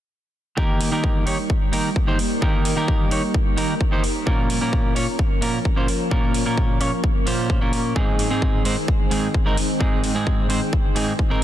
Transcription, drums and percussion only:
0.58 kick
0.81 open hi-hat
1.04 kick
1.27 open hi-hat
1.50 kick
1.73 open hi-hat
1.96 kick
2.19 open hi-hat
2.42 kick
2.65 open hi-hat
2.88 kick
3.11 open hi-hat
3.34 kick
3.58 open hi-hat
3.81 kick
4.04 open hi-hat
4.27 kick
4.50 open hi-hat
4.73 kick
4.96 open hi-hat
5.19 kick
5.42 open hi-hat
5.65 kick
5.88 open hi-hat
6.11 kick
6.34 open hi-hat
6.58 kick
6.81 open hi-hat
7.04 kick
7.27 open hi-hat
7.50 kick
7.73 open hi-hat
7.96 kick
8.19 open hi-hat
8.42 kick
8.65 open hi-hat
8.88 kick
9.11 open hi-hat
9.34 kick
9.57 open hi-hat
9.81 kick
10.04 open hi-hat
10.27 kick
10.50 open hi-hat
10.73 kick
10.96 open hi-hat
11.19 kick

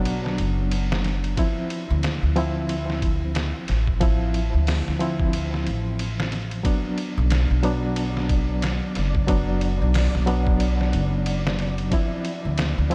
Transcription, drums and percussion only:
0.05 ride
0.26 snare
0.38 ride
0.71 ride
0.92 snare
1.04 snare, ride
1.24 ride
1.37 kick, ride
1.70 ride
2.03 snare, ride
2.36 ride
2.69 ride
2.90 snare
3.02 kick, ride
3.35 snare, ride
3.68 snare, ride
3.87 kick
4.01 kick, ride
4.34 ride
4.67 snare, open hi-hat
4.88 snare
5.00 ride
5.20 kick
5.33 ride
5.54 snare
5.67 ride
5.99 ride
6.20 snare
6.32 snare, ride
6.51 ride
6.65 kick, ride
6.98 ride
7.30 snare, ride
7.63 ride
7.96 ride
8.17 snare
8.29 kick, ride
8.62 snare, ride
8.95 snare, ride
9.15 kick
9.28 kick, ride
9.61 ride
9.94 snare, open hi-hat
10.15 snare
10.27 ride
10.47 kick
10.60 ride
10.81 snare
10.93 ride
11.26 ride
11.47 snare
11.59 snare, ride
11.78 ride
11.92 kick, ride
12.25 ride
12.58 snare, ride
12.91 ride

